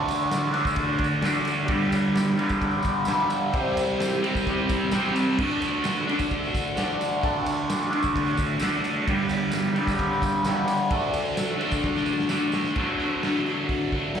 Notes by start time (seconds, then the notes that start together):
Already playing: D3 A3 D4 F#4 A4 D5
0.08 ride, tambourine
0.31 F#4 A4 D5, snare, ride, tambourine
0.52 D3 A3 D4, ride
0.57 tambourine
0.65 kick, tambourine
0.76 F#4 A4 D5, kick, ride
0.80 tambourine
0.92 tambourine
0.98 kick, ride
1.04 tambourine
1.19 F#4 A4 D5, snare, ride
1.23 D3 A3 D4, tambourine
1.45 ride, tambourine
1.64 G2 G4 B4 D5, ride
1.69 D3 G3, kick, tambourine
1.92 ride, tambourine
2.13 G4 B4 D5, snare, ride, tambourine
2.37 D3 G3, ride, tambourine
2.41 G2
2.49 kick, tambourine
2.60 G4 B4 D5, kick, ride, tambourine
2.71 tambourine
2.83 kick, ride, tambourine
3.05 G2 D3 G4 B4 E5, snare, ride, tambourine
3.10 G3
3.30 ride, tambourine
3.51 C3 G4 C5 E5, kick, ride, tambourine
3.57 G3 C4
3.77 ride, tambourine
3.90 tambourine
3.98 G4 C5 E5, snare, ride, tambourine
4.22 C3 G3 C4, ride
4.35 kick, tambourine
4.46 G4 C5 D5, kick, ride
4.68 E5, kick, ride, tambourine
4.91 C3 G3 C4 G4 C5 F#5 G5, snare, ride, tambourine
5.05 tambourine
5.15 A5, ride, tambourine
5.38 D3 A3 F#4 A4 D5, kick, tambourine, crash
5.43 D4
5.62 ride, tambourine
5.84 F#4 A4 B4, snare, ride, tambourine
6.07 D3 A3 D4, ride, tambourine
6.19 kick, tambourine
6.31 F#4 A4 E5, kick, ride, tambourine
6.44 tambourine
6.54 kick, ride, tambourine
6.76 D3 A3 F#4 A4 D5, snare, ride, tambourine
6.80 D4
7.01 ride, tambourine
7.22 D3 A3 D4 F#4 A4 D5, kick, ride, tambourine
7.46 ride, tambourine
7.70 F#4 A4 D5, snare, ride, tambourine
7.90 A3 D4, ride, tambourine
7.95 D3
8.03 kick, tambourine
8.16 F#4 A4 D5, kick, ride, tambourine
8.26 tambourine
8.37 E5, kick, ride, tambourine
8.58 D3 A3 F#5, ride, tambourine
8.63 D4 F#4 A4 D5, snare
8.84 A5, ride, tambourine
9.05 G2 D3 G4, kick, ride, tambourine
9.10 G3 B4 D5
9.29 ride, tambourine
9.52 snare, ride, tambourine
9.57 G4 B4 D5
9.75 D3 G3, ride, tambourine
9.79 G2
9.87 kick, tambourine
9.98 G4 B4 D5, kick, ride, tambourine
10.13 tambourine
10.22 kick, ride, tambourine
10.43 G2 D3 G4, snare, ride, tambourine
10.47 G3 B4 C#5
10.68 ride, tambourine
10.89 D3 A3 F#4 A4, kick, ride, tambourine
10.93 D4 D5
11.03 tambourine
11.14 ride, tambourine
11.25 tambourine
11.37 F#4 A4 E5, snare, ride, tambourine
11.49 tambourine
11.59 A3 D4, ride
11.64 D3
11.71 kick, tambourine
11.84 F#4 A4 D5, kick, snare
11.95 snare, tambourine
12.06 tambourine
12.17 snare, tambourine
12.28 D3 A3 D4 F#4 A4 D5, snare, tambourine
12.52 snare, tambourine
12.64 snare, tambourine
12.76 D3 F#3 A3 D4, kick, crash
12.99 A3 D4, open hi-hat
13.03 F#3
13.23 D3 F#3 A3 D4, snare, open hi-hat
13.46 A3 D4, open hi-hat
13.52 F#3
13.69 kick, open hi-hat
13.92 F#3 A3 D4, kick, open hi-hat
14.15 D3 F#3, snare, open hi-hat